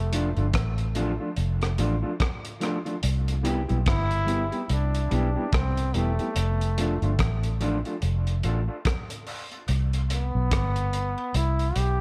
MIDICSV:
0, 0, Header, 1, 6, 480
1, 0, Start_track
1, 0, Key_signature, 0, "major"
1, 0, Tempo, 831025
1, 1752, Time_signature, 4, 2, 24, 8
1, 6936, End_track
2, 0, Start_track
2, 0, Title_t, "Trombone"
2, 0, Program_c, 0, 57
2, 0, Note_on_c, 0, 57, 92
2, 294, Note_off_c, 0, 57, 0
2, 2245, Note_on_c, 0, 64, 117
2, 2688, Note_off_c, 0, 64, 0
2, 2688, Note_on_c, 0, 64, 59
2, 2722, Note_on_c, 0, 62, 94
2, 2731, Note_off_c, 0, 64, 0
2, 3197, Note_on_c, 0, 60, 105
2, 3205, Note_off_c, 0, 62, 0
2, 3439, Note_on_c, 0, 57, 86
2, 3448, Note_off_c, 0, 60, 0
2, 4396, Note_off_c, 0, 57, 0
2, 5840, Note_on_c, 0, 59, 98
2, 6560, Note_on_c, 0, 64, 93
2, 6569, Note_off_c, 0, 59, 0
2, 6799, Note_on_c, 0, 67, 107
2, 6807, Note_off_c, 0, 64, 0
2, 6936, Note_off_c, 0, 67, 0
2, 6936, End_track
3, 0, Start_track
3, 0, Title_t, "Clean electric guitar"
3, 0, Program_c, 1, 27
3, 71, Note_on_c, 1, 53, 78
3, 75, Note_on_c, 1, 57, 77
3, 78, Note_on_c, 1, 62, 83
3, 81, Note_on_c, 1, 65, 88
3, 161, Note_off_c, 1, 53, 0
3, 163, Note_off_c, 1, 57, 0
3, 164, Note_off_c, 1, 62, 0
3, 166, Note_off_c, 1, 65, 0
3, 216, Note_on_c, 1, 65, 55
3, 219, Note_on_c, 1, 62, 55
3, 222, Note_on_c, 1, 57, 56
3, 224, Note_on_c, 1, 53, 47
3, 263, Note_off_c, 1, 65, 0
3, 265, Note_off_c, 1, 62, 0
3, 266, Note_off_c, 1, 57, 0
3, 267, Note_off_c, 1, 53, 0
3, 549, Note_on_c, 1, 53, 94
3, 552, Note_on_c, 1, 57, 99
3, 553, Note_on_c, 1, 62, 97
3, 556, Note_on_c, 1, 65, 118
3, 640, Note_off_c, 1, 53, 0
3, 642, Note_off_c, 1, 57, 0
3, 642, Note_off_c, 1, 62, 0
3, 643, Note_off_c, 1, 65, 0
3, 692, Note_on_c, 1, 65, 61
3, 697, Note_on_c, 1, 62, 56
3, 699, Note_on_c, 1, 57, 55
3, 702, Note_on_c, 1, 53, 51
3, 741, Note_off_c, 1, 65, 0
3, 743, Note_off_c, 1, 62, 0
3, 745, Note_off_c, 1, 57, 0
3, 746, Note_off_c, 1, 53, 0
3, 1030, Note_on_c, 1, 53, 77
3, 1032, Note_on_c, 1, 57, 83
3, 1036, Note_on_c, 1, 62, 89
3, 1036, Note_on_c, 1, 65, 102
3, 1120, Note_off_c, 1, 53, 0
3, 1122, Note_off_c, 1, 57, 0
3, 1123, Note_off_c, 1, 62, 0
3, 1123, Note_off_c, 1, 65, 0
3, 1169, Note_on_c, 1, 65, 70
3, 1172, Note_on_c, 1, 62, 62
3, 1173, Note_on_c, 1, 57, 57
3, 1176, Note_on_c, 1, 53, 50
3, 1220, Note_off_c, 1, 65, 0
3, 1221, Note_off_c, 1, 57, 0
3, 1221, Note_off_c, 1, 62, 0
3, 1223, Note_off_c, 1, 53, 0
3, 1504, Note_on_c, 1, 53, 91
3, 1508, Note_on_c, 1, 57, 93
3, 1511, Note_on_c, 1, 62, 84
3, 1513, Note_on_c, 1, 65, 90
3, 1598, Note_off_c, 1, 53, 0
3, 1600, Note_off_c, 1, 57, 0
3, 1601, Note_off_c, 1, 62, 0
3, 1602, Note_off_c, 1, 65, 0
3, 1647, Note_on_c, 1, 65, 65
3, 1651, Note_on_c, 1, 57, 58
3, 1651, Note_on_c, 1, 62, 64
3, 1654, Note_on_c, 1, 53, 51
3, 1699, Note_off_c, 1, 65, 0
3, 1701, Note_off_c, 1, 57, 0
3, 1701, Note_off_c, 1, 62, 0
3, 1702, Note_off_c, 1, 53, 0
3, 1983, Note_on_c, 1, 55, 88
3, 1986, Note_on_c, 1, 59, 83
3, 1987, Note_on_c, 1, 64, 101
3, 1992, Note_on_c, 1, 67, 103
3, 2077, Note_off_c, 1, 55, 0
3, 2079, Note_off_c, 1, 59, 0
3, 2079, Note_off_c, 1, 64, 0
3, 2082, Note_off_c, 1, 67, 0
3, 2127, Note_on_c, 1, 67, 70
3, 2129, Note_on_c, 1, 64, 64
3, 2133, Note_on_c, 1, 59, 55
3, 2135, Note_on_c, 1, 55, 60
3, 2179, Note_off_c, 1, 67, 0
3, 2180, Note_off_c, 1, 64, 0
3, 2182, Note_off_c, 1, 59, 0
3, 2183, Note_off_c, 1, 55, 0
3, 2460, Note_on_c, 1, 55, 87
3, 2464, Note_on_c, 1, 59, 85
3, 2467, Note_on_c, 1, 64, 86
3, 2468, Note_on_c, 1, 67, 94
3, 2556, Note_off_c, 1, 55, 0
3, 2558, Note_off_c, 1, 59, 0
3, 2559, Note_off_c, 1, 64, 0
3, 2560, Note_off_c, 1, 67, 0
3, 2608, Note_on_c, 1, 67, 60
3, 2613, Note_on_c, 1, 64, 56
3, 2614, Note_on_c, 1, 59, 56
3, 2615, Note_on_c, 1, 55, 49
3, 2659, Note_off_c, 1, 67, 0
3, 2662, Note_off_c, 1, 64, 0
3, 2663, Note_off_c, 1, 55, 0
3, 2663, Note_off_c, 1, 59, 0
3, 2949, Note_on_c, 1, 55, 67
3, 2953, Note_on_c, 1, 59, 80
3, 2955, Note_on_c, 1, 64, 81
3, 2958, Note_on_c, 1, 67, 92
3, 3040, Note_off_c, 1, 55, 0
3, 3043, Note_off_c, 1, 59, 0
3, 3043, Note_off_c, 1, 64, 0
3, 3045, Note_off_c, 1, 67, 0
3, 3096, Note_on_c, 1, 67, 64
3, 3100, Note_on_c, 1, 64, 62
3, 3102, Note_on_c, 1, 59, 57
3, 3106, Note_on_c, 1, 55, 57
3, 3143, Note_off_c, 1, 67, 0
3, 3145, Note_off_c, 1, 64, 0
3, 3146, Note_off_c, 1, 59, 0
3, 3148, Note_off_c, 1, 55, 0
3, 3434, Note_on_c, 1, 55, 86
3, 3437, Note_on_c, 1, 59, 72
3, 3439, Note_on_c, 1, 64, 76
3, 3442, Note_on_c, 1, 67, 82
3, 3523, Note_off_c, 1, 55, 0
3, 3524, Note_off_c, 1, 59, 0
3, 3525, Note_off_c, 1, 64, 0
3, 3527, Note_off_c, 1, 67, 0
3, 3580, Note_on_c, 1, 67, 57
3, 3583, Note_on_c, 1, 64, 50
3, 3587, Note_on_c, 1, 55, 50
3, 3587, Note_on_c, 1, 59, 55
3, 3625, Note_off_c, 1, 67, 0
3, 3627, Note_off_c, 1, 64, 0
3, 3629, Note_off_c, 1, 55, 0
3, 3629, Note_off_c, 1, 59, 0
3, 3915, Note_on_c, 1, 53, 82
3, 3919, Note_on_c, 1, 57, 81
3, 3923, Note_on_c, 1, 62, 84
3, 3925, Note_on_c, 1, 65, 95
3, 4003, Note_off_c, 1, 53, 0
3, 4005, Note_off_c, 1, 57, 0
3, 4007, Note_off_c, 1, 62, 0
3, 4008, Note_off_c, 1, 65, 0
3, 4060, Note_on_c, 1, 65, 63
3, 4061, Note_on_c, 1, 62, 56
3, 4064, Note_on_c, 1, 57, 55
3, 4066, Note_on_c, 1, 53, 50
3, 4105, Note_off_c, 1, 65, 0
3, 4106, Note_off_c, 1, 62, 0
3, 4108, Note_off_c, 1, 53, 0
3, 4108, Note_off_c, 1, 57, 0
3, 4393, Note_on_c, 1, 53, 101
3, 4396, Note_on_c, 1, 57, 84
3, 4401, Note_on_c, 1, 62, 107
3, 4402, Note_on_c, 1, 65, 103
3, 4483, Note_off_c, 1, 53, 0
3, 4484, Note_off_c, 1, 57, 0
3, 4486, Note_off_c, 1, 62, 0
3, 4487, Note_off_c, 1, 65, 0
3, 4540, Note_on_c, 1, 65, 62
3, 4543, Note_on_c, 1, 62, 57
3, 4546, Note_on_c, 1, 57, 58
3, 4547, Note_on_c, 1, 53, 49
3, 4585, Note_off_c, 1, 65, 0
3, 4587, Note_off_c, 1, 62, 0
3, 4588, Note_off_c, 1, 57, 0
3, 4589, Note_off_c, 1, 53, 0
3, 4872, Note_on_c, 1, 53, 72
3, 4876, Note_on_c, 1, 57, 85
3, 4877, Note_on_c, 1, 62, 79
3, 4879, Note_on_c, 1, 65, 86
3, 4962, Note_off_c, 1, 53, 0
3, 4964, Note_off_c, 1, 57, 0
3, 4964, Note_off_c, 1, 62, 0
3, 4965, Note_off_c, 1, 65, 0
3, 5012, Note_on_c, 1, 65, 67
3, 5015, Note_on_c, 1, 62, 58
3, 5017, Note_on_c, 1, 57, 59
3, 5020, Note_on_c, 1, 53, 54
3, 5061, Note_off_c, 1, 65, 0
3, 5063, Note_off_c, 1, 62, 0
3, 5064, Note_off_c, 1, 57, 0
3, 5065, Note_off_c, 1, 53, 0
3, 5353, Note_on_c, 1, 53, 85
3, 5355, Note_on_c, 1, 57, 90
3, 5359, Note_on_c, 1, 62, 83
3, 5362, Note_on_c, 1, 65, 96
3, 5442, Note_off_c, 1, 53, 0
3, 5443, Note_off_c, 1, 57, 0
3, 5445, Note_off_c, 1, 62, 0
3, 5447, Note_off_c, 1, 65, 0
3, 5496, Note_on_c, 1, 65, 59
3, 5498, Note_on_c, 1, 62, 49
3, 5501, Note_on_c, 1, 57, 57
3, 5503, Note_on_c, 1, 53, 48
3, 5543, Note_off_c, 1, 65, 0
3, 5544, Note_off_c, 1, 62, 0
3, 5546, Note_off_c, 1, 57, 0
3, 5547, Note_off_c, 1, 53, 0
3, 5832, Note_on_c, 1, 55, 89
3, 5834, Note_on_c, 1, 59, 87
3, 5838, Note_on_c, 1, 64, 82
3, 5842, Note_on_c, 1, 67, 82
3, 5922, Note_off_c, 1, 55, 0
3, 5923, Note_off_c, 1, 59, 0
3, 5925, Note_off_c, 1, 64, 0
3, 5927, Note_off_c, 1, 67, 0
3, 6936, End_track
4, 0, Start_track
4, 0, Title_t, "Tonewheel organ"
4, 0, Program_c, 2, 16
4, 5744, Note_on_c, 2, 55, 59
4, 5786, Note_off_c, 2, 55, 0
4, 6800, Note_on_c, 2, 59, 80
4, 6801, Note_on_c, 2, 60, 72
4, 6803, Note_on_c, 2, 64, 82
4, 6864, Note_off_c, 2, 59, 0
4, 6865, Note_off_c, 2, 60, 0
4, 6866, Note_off_c, 2, 64, 0
4, 6936, End_track
5, 0, Start_track
5, 0, Title_t, "Fingered electric bass"
5, 0, Program_c, 3, 33
5, 0, Note_on_c, 3, 29, 110
5, 197, Note_off_c, 3, 29, 0
5, 215, Note_on_c, 3, 31, 101
5, 307, Note_off_c, 3, 31, 0
5, 311, Note_on_c, 3, 33, 104
5, 676, Note_off_c, 3, 33, 0
5, 795, Note_on_c, 3, 29, 103
5, 1022, Note_off_c, 3, 29, 0
5, 1032, Note_on_c, 3, 33, 88
5, 1168, Note_off_c, 3, 33, 0
5, 1754, Note_on_c, 3, 36, 107
5, 2117, Note_off_c, 3, 36, 0
5, 2139, Note_on_c, 3, 35, 92
5, 2230, Note_off_c, 3, 35, 0
5, 2234, Note_on_c, 3, 31, 98
5, 2598, Note_off_c, 3, 31, 0
5, 2714, Note_on_c, 3, 36, 92
5, 2942, Note_off_c, 3, 36, 0
5, 2956, Note_on_c, 3, 35, 86
5, 3090, Note_off_c, 3, 35, 0
5, 3193, Note_on_c, 3, 36, 92
5, 3421, Note_off_c, 3, 36, 0
5, 3436, Note_on_c, 3, 28, 83
5, 3570, Note_off_c, 3, 28, 0
5, 3674, Note_on_c, 3, 29, 121
5, 4038, Note_off_c, 3, 29, 0
5, 4055, Note_on_c, 3, 31, 82
5, 4148, Note_off_c, 3, 31, 0
5, 4153, Note_on_c, 3, 33, 98
5, 4517, Note_off_c, 3, 33, 0
5, 4637, Note_on_c, 3, 29, 103
5, 4863, Note_off_c, 3, 29, 0
5, 4877, Note_on_c, 3, 33, 91
5, 5011, Note_off_c, 3, 33, 0
5, 5596, Note_on_c, 3, 36, 102
5, 5959, Note_off_c, 3, 36, 0
5, 5979, Note_on_c, 3, 35, 89
5, 6069, Note_off_c, 3, 35, 0
5, 6075, Note_on_c, 3, 31, 98
5, 6438, Note_off_c, 3, 31, 0
5, 6553, Note_on_c, 3, 36, 99
5, 6781, Note_off_c, 3, 36, 0
5, 6793, Note_on_c, 3, 35, 82
5, 6928, Note_off_c, 3, 35, 0
5, 6936, End_track
6, 0, Start_track
6, 0, Title_t, "Drums"
6, 73, Note_on_c, 9, 42, 94
6, 131, Note_off_c, 9, 42, 0
6, 211, Note_on_c, 9, 42, 32
6, 269, Note_off_c, 9, 42, 0
6, 309, Note_on_c, 9, 42, 86
6, 311, Note_on_c, 9, 36, 112
6, 318, Note_on_c, 9, 37, 109
6, 367, Note_off_c, 9, 42, 0
6, 369, Note_off_c, 9, 36, 0
6, 376, Note_off_c, 9, 37, 0
6, 451, Note_on_c, 9, 42, 50
6, 508, Note_off_c, 9, 42, 0
6, 549, Note_on_c, 9, 42, 65
6, 607, Note_off_c, 9, 42, 0
6, 789, Note_on_c, 9, 42, 65
6, 846, Note_off_c, 9, 42, 0
6, 933, Note_on_c, 9, 42, 42
6, 940, Note_on_c, 9, 37, 62
6, 991, Note_off_c, 9, 42, 0
6, 997, Note_off_c, 9, 37, 0
6, 1030, Note_on_c, 9, 42, 70
6, 1088, Note_off_c, 9, 42, 0
6, 1271, Note_on_c, 9, 42, 72
6, 1272, Note_on_c, 9, 36, 120
6, 1281, Note_on_c, 9, 37, 118
6, 1328, Note_off_c, 9, 42, 0
6, 1329, Note_off_c, 9, 36, 0
6, 1339, Note_off_c, 9, 37, 0
6, 1413, Note_on_c, 9, 42, 61
6, 1471, Note_off_c, 9, 42, 0
6, 1509, Note_on_c, 9, 42, 60
6, 1522, Note_on_c, 9, 37, 58
6, 1567, Note_off_c, 9, 42, 0
6, 1579, Note_off_c, 9, 37, 0
6, 1653, Note_on_c, 9, 42, 33
6, 1711, Note_off_c, 9, 42, 0
6, 1749, Note_on_c, 9, 42, 92
6, 1807, Note_off_c, 9, 42, 0
6, 1895, Note_on_c, 9, 42, 57
6, 1953, Note_off_c, 9, 42, 0
6, 1991, Note_on_c, 9, 42, 84
6, 2049, Note_off_c, 9, 42, 0
6, 2133, Note_on_c, 9, 42, 30
6, 2191, Note_off_c, 9, 42, 0
6, 2230, Note_on_c, 9, 42, 83
6, 2232, Note_on_c, 9, 36, 110
6, 2238, Note_on_c, 9, 37, 91
6, 2288, Note_off_c, 9, 42, 0
6, 2290, Note_off_c, 9, 36, 0
6, 2296, Note_off_c, 9, 37, 0
6, 2373, Note_on_c, 9, 42, 52
6, 2431, Note_off_c, 9, 42, 0
6, 2472, Note_on_c, 9, 42, 68
6, 2530, Note_off_c, 9, 42, 0
6, 2612, Note_on_c, 9, 42, 34
6, 2670, Note_off_c, 9, 42, 0
6, 2712, Note_on_c, 9, 42, 76
6, 2769, Note_off_c, 9, 42, 0
6, 2857, Note_on_c, 9, 42, 52
6, 2914, Note_off_c, 9, 42, 0
6, 2953, Note_on_c, 9, 42, 71
6, 3011, Note_off_c, 9, 42, 0
6, 3191, Note_on_c, 9, 42, 70
6, 3193, Note_on_c, 9, 36, 113
6, 3202, Note_on_c, 9, 37, 112
6, 3249, Note_off_c, 9, 42, 0
6, 3250, Note_off_c, 9, 36, 0
6, 3260, Note_off_c, 9, 37, 0
6, 3335, Note_on_c, 9, 42, 56
6, 3393, Note_off_c, 9, 42, 0
6, 3432, Note_on_c, 9, 42, 70
6, 3490, Note_off_c, 9, 42, 0
6, 3576, Note_on_c, 9, 42, 34
6, 3634, Note_off_c, 9, 42, 0
6, 3672, Note_on_c, 9, 42, 92
6, 3730, Note_off_c, 9, 42, 0
6, 3820, Note_on_c, 9, 42, 52
6, 3878, Note_off_c, 9, 42, 0
6, 3915, Note_on_c, 9, 42, 94
6, 3973, Note_off_c, 9, 42, 0
6, 4056, Note_on_c, 9, 42, 32
6, 4114, Note_off_c, 9, 42, 0
6, 4152, Note_on_c, 9, 42, 86
6, 4154, Note_on_c, 9, 36, 111
6, 4160, Note_on_c, 9, 37, 90
6, 4209, Note_off_c, 9, 42, 0
6, 4211, Note_off_c, 9, 36, 0
6, 4218, Note_off_c, 9, 37, 0
6, 4294, Note_on_c, 9, 42, 55
6, 4352, Note_off_c, 9, 42, 0
6, 4394, Note_on_c, 9, 42, 66
6, 4452, Note_off_c, 9, 42, 0
6, 4535, Note_on_c, 9, 42, 38
6, 4593, Note_off_c, 9, 42, 0
6, 4631, Note_on_c, 9, 42, 68
6, 4689, Note_off_c, 9, 42, 0
6, 4776, Note_on_c, 9, 42, 49
6, 4834, Note_off_c, 9, 42, 0
6, 4871, Note_on_c, 9, 42, 75
6, 4929, Note_off_c, 9, 42, 0
6, 5112, Note_on_c, 9, 42, 75
6, 5114, Note_on_c, 9, 36, 126
6, 5123, Note_on_c, 9, 37, 117
6, 5170, Note_off_c, 9, 42, 0
6, 5171, Note_off_c, 9, 36, 0
6, 5181, Note_off_c, 9, 37, 0
6, 5257, Note_on_c, 9, 42, 61
6, 5314, Note_off_c, 9, 42, 0
6, 5352, Note_on_c, 9, 46, 64
6, 5410, Note_off_c, 9, 46, 0
6, 5496, Note_on_c, 9, 42, 32
6, 5553, Note_off_c, 9, 42, 0
6, 5590, Note_on_c, 9, 56, 72
6, 5592, Note_on_c, 9, 42, 79
6, 5648, Note_off_c, 9, 56, 0
6, 5650, Note_off_c, 9, 42, 0
6, 5738, Note_on_c, 9, 42, 51
6, 5796, Note_off_c, 9, 42, 0
6, 5835, Note_on_c, 9, 42, 86
6, 5892, Note_off_c, 9, 42, 0
6, 6073, Note_on_c, 9, 42, 95
6, 6073, Note_on_c, 9, 56, 94
6, 6074, Note_on_c, 9, 36, 108
6, 6082, Note_on_c, 9, 37, 98
6, 6131, Note_off_c, 9, 36, 0
6, 6131, Note_off_c, 9, 42, 0
6, 6131, Note_off_c, 9, 56, 0
6, 6139, Note_off_c, 9, 37, 0
6, 6215, Note_on_c, 9, 42, 54
6, 6272, Note_off_c, 9, 42, 0
6, 6314, Note_on_c, 9, 42, 68
6, 6372, Note_off_c, 9, 42, 0
6, 6456, Note_on_c, 9, 56, 75
6, 6514, Note_off_c, 9, 56, 0
6, 6552, Note_on_c, 9, 42, 74
6, 6610, Note_off_c, 9, 42, 0
6, 6696, Note_on_c, 9, 42, 44
6, 6754, Note_off_c, 9, 42, 0
6, 6790, Note_on_c, 9, 42, 75
6, 6790, Note_on_c, 9, 56, 73
6, 6848, Note_off_c, 9, 42, 0
6, 6848, Note_off_c, 9, 56, 0
6, 6936, End_track
0, 0, End_of_file